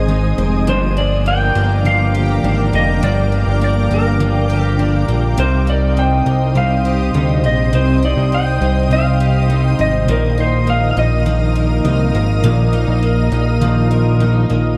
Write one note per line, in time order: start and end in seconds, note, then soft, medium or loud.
0.00 0.34 G#1 medium
0.00 0.67 G#2 medium
0.00 0.73 G#3 medium
0.00 0.37 C4 medium
0.00 0.10 D#4 medium
0.00 0.73 G#4 medium
0.00 0.63 C5 medium
0.00 0.63 D#5 medium
0.00 0.63 G#5 medium
0.00 0.63 D#6 medium
0.07 0.67 D#3 medium
0.07 0.68 G#3 medium
0.07 0.68 C4 medium
0.07 0.73 D#4 medium
0.12 0.69 D#4 medium
0.38 0.66 F1 medium
0.38 0.73 C4 medium
0.66 1.51 G1 loud
0.66 0.96 G2 medium
0.66 3.01 G2 medium
0.66 0.97 D3 medium
0.66 0.97 F3 medium
0.66 0.97 A#3 medium
0.66 0.94 D4 medium
0.66 5.34 A#4 medium
0.66 0.99 C5 loud
0.66 5.34 F5 medium
0.66 5.34 G5 medium
0.66 5.34 D6 medium
0.95 1.86 A#3 soft
0.95 1.84 D4 soft
0.95 1.54 D4 medium
0.95 1.28 D5 loud
1.00 1.84 F3 soft
1.26 2.72 A#3 medium
1.26 1.87 G5 loud
1.55 2.40 G1 loud
1.55 2.43 D4 medium
1.84 2.41 D3 medium
1.84 4.19 F3 medium
1.84 2.43 F3 medium
1.84 2.45 A#3 medium
1.84 2.77 F5 loud
1.89 2.46 D4 medium
2.15 4.49 G4 medium
2.43 2.72 G#1 medium
2.43 3.02 D3 medium
2.43 3.02 F3 medium
2.43 3.03 A#3 medium
2.43 3.31 D4 medium
2.47 3.04 D4 medium
2.73 3.01 F1 medium
2.73 3.60 A#3 medium
2.73 3.04 D#5 medium
3.02 3.45 G1 loud
3.02 3.32 G2 medium
3.02 5.38 G2 medium
3.02 3.32 D3 medium
3.02 3.33 F3 medium
3.02 3.32 A#3 medium
3.02 3.30 D4 medium
3.02 3.63 D5 loud
3.31 4.21 A#3 soft
3.31 4.20 D4 medium
3.31 3.90 D4 medium
3.36 4.19 F3 soft
3.47 3.89 G1 loud
3.61 5.07 A#3 medium
3.61 3.93 D5 medium
3.91 5.05 G1 medium
3.91 4.78 D4 medium
3.91 4.47 A#4 medium
4.19 4.76 D3 medium
4.19 5.44 F3 medium
4.19 4.78 F3 medium
4.19 4.80 A#3 medium
4.24 4.81 D4 medium
4.50 6.85 G4 medium
4.77 5.37 D3 medium
4.77 5.38 F3 medium
4.77 5.39 A#3 medium
4.77 5.44 D4 medium
4.82 5.39 D4 medium
5.08 5.36 A#1 medium
5.08 5.44 A#3 medium
5.37 6.22 C2 loud
5.37 5.67 C3 medium
5.37 7.72 C3 medium
5.37 5.68 G3 medium
5.37 5.67 C4 medium
5.37 5.64 D#4 medium
5.37 10.04 C5 medium
5.37 5.69 C5 loud
5.37 14.75 D#5 medium
5.37 10.04 G5 medium
5.37 10.04 D#6 medium
5.65 6.56 C4 soft
5.65 6.58 D#4 soft
5.65 6.26 D#4 medium
5.70 6.55 G3 soft
5.70 5.99 D5 loud
5.97 7.42 C4 medium
5.97 6.57 G5 loud
6.26 7.10 C2 loud
6.26 7.14 D#4 medium
6.54 7.12 C3 medium
6.54 8.90 G3 medium
6.54 7.14 G3 medium
6.54 7.15 C4 medium
6.54 7.47 F5 loud
6.59 7.17 D#4 medium
6.85 9.19 G4 medium
7.13 7.45 D2 loud
7.13 7.71 C3 medium
7.13 7.73 G3 medium
7.13 7.74 C4 medium
7.13 8.02 D#4 medium
7.18 7.75 D#4 medium
7.43 7.74 A#1 medium
7.43 8.31 C4 medium
7.43 7.75 D#5 medium
7.72 8.15 C2 loud
7.72 8.02 C3 medium
7.72 10.08 C3 medium
7.72 8.03 G3 medium
7.72 8.02 C4 medium
7.72 8.00 D#4 medium
7.72 8.04 C5 loud
8.01 8.91 C4 soft
8.01 8.94 D#4 medium
8.01 8.61 D#4 medium
8.05 8.90 G3 soft
8.05 8.34 D5 medium
8.17 8.59 C2 loud
8.32 9.78 C4 medium
8.32 8.92 G5 loud
8.61 9.75 C2 loud
8.61 9.49 D#4 medium
8.89 9.47 C3 medium
8.89 10.14 G3 medium
8.89 9.49 G3 medium
8.89 9.51 C4 medium
8.89 9.81 F5 loud
8.94 9.53 D#4 medium
9.20 10.14 G4 medium
9.48 10.08 C3 medium
9.48 10.09 G3 medium
9.48 10.09 C4 medium
9.48 10.37 D#4 medium
9.53 10.13 D#4 medium
9.79 10.07 G#1 loud
9.79 10.14 C4 medium
9.79 10.10 D#5 loud
10.06 10.93 A#1 loud
10.06 11.25 A#2 medium
10.06 12.42 A#2 medium
10.06 11.24 D#3 medium
10.06 14.75 A#4 medium
10.06 14.75 F5 medium
10.06 14.75 D#6 medium
10.11 11.25 F3 medium
10.11 11.28 A#3 medium
10.11 11.29 D#4 medium
10.11 10.40 A#4 loud
10.38 10.96 D#4 medium
10.38 10.69 C5 medium
10.67 12.14 A#3 medium
10.67 10.90 F5 loud
10.91 10.97 F5 medium
10.97 11.81 A#1 medium
10.97 11.84 D#4 medium
10.97 14.17 D#5 medium
11.24 11.83 D#3 medium
11.24 13.60 F3 medium
11.24 11.84 F3 medium
11.24 11.87 A#3 medium
11.29 11.88 D#4 medium
11.55 13.90 A#4 medium
11.84 12.13 C2 loud
11.84 12.43 D#3 medium
11.84 12.44 F3 medium
11.84 12.45 A#3 medium
11.84 12.72 D#4 medium
11.89 12.46 D#4 medium
12.15 12.42 G#1 medium
12.15 13.02 A#3 medium
12.43 12.86 A#1 loud
12.43 12.73 A#2 medium
12.43 14.77 A#2 loud
12.43 12.73 D#3 medium
12.43 12.74 F3 medium
12.43 12.74 A#3 loud
12.43 12.71 D#4 loud
12.72 13.64 A#3 medium
12.72 13.65 D#4 medium
12.72 13.31 D#4 medium
12.77 13.61 F3 soft
12.88 13.30 A#1 medium
13.02 14.49 A#3 medium
13.32 14.46 A#1 loud
13.32 14.20 D#4 medium
13.60 14.19 D#3 medium
13.60 14.77 F3 medium
13.60 14.20 F3 medium
13.60 14.22 A#3 medium
13.65 14.24 D#4 medium
13.91 14.77 A#4 medium
14.19 14.77 D#3 medium
14.19 14.77 F3 medium
14.19 14.77 A#3 medium
14.19 14.77 D#4 medium
14.24 14.77 D#4 medium
14.50 14.77 A#1 medium
14.50 14.77 A#3 medium